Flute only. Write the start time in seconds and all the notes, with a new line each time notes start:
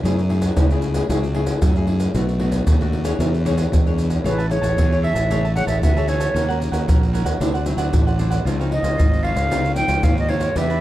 4.26 B4
4.50 C#5
5.03 E5
5.55 F#5
5.68 E5
5.83 E5
6.09 C#5
8.71 D#5
9.24 F5
9.76 G5
10.04 F5
10.19 D#5
10.29 C#5
10.57 E5